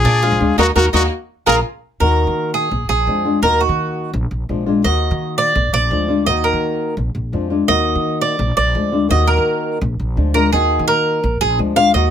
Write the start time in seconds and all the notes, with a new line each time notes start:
Already playing: F4 G#4
0.05 A#2 D4
0.23 F3 G#3 D4 F4
0.32 A#1
0.40 D2 G#3 D4 F4
0.58 D#2 A#3 D#4 F#4 A#4
0.75 D#2 A#3 D#4 F#4 A#4
0.93 D#2 A#3 D#4 F#4 A#4
1.46 A#1 A#3 D4 F4 G#4 A#4
2.00 D#2 D#3 A#3 D#4 F#4 A#4
2.27 D#3
2.54 G#4
2.71 A#1, muted nylon-string guitar stroke
2.89 A#1 G#4
3.07 F2 F3 G#3 D4 F4
3.25 G#3 D4 F4
3.42 D#2 D#3 A#3 D#4 F#4 A#4
3.61 F#4
3.69 D#3
4.13 A#1, muted nylon-string guitar stroke
4.31 A#1
4.49 A#1 F3 G#3 D4 F4
4.66 G#3 D4 F4
4.84 D#2 D#3 A#3 D#4 F#4 D#5
5.11 D#3
5.38 D5
5.55 A#1, muted nylon-string guitar stroke
5.73 A#1 D5
5.91 D2 F3 G#3 D4 F4
6.08 G#3 D4 F4
6.26 D#2 D#3 A#3 D#4 F#4 D#5
6.44 A#4
6.53 D#3
6.97 A#1, muted nylon-string guitar stroke
7.15 A#1
7.32 F2 F3 G#3 D4 F4
7.50 G#3 D4 F4
7.68 D#2 D#3 A#3 D#4 F#4 D#5
7.95 D#3
8.21 D5
8.39 A#1, muted nylon-string guitar stroke
8.57 A#1 D5
8.74 D2 F3 G#3 D4 F4
8.92 G#3 D4 F4
9.09 D#2 D#3 A#3 D#4 F#4 D#5
9.27 A#4
9.38 D#3
9.81 A#1, muted nylon-string guitar stroke
9.99 A#1
10.16 D2 F3 G#3 D4 F4
10.34 G#3 D4 F4 A#4
10.52 D#2 D#3 A#3 D#4 F#4 G#4
10.79 D#3
10.88 A#4
11.23 A#1, muted nylon-string guitar stroke
11.41 A#1 G#4
11.58 D2 F3 G#3 D4 F4
11.76 G#3 D4 F4 F5
11.94 D#2 D#3 A#3 D#4 F#4 D#5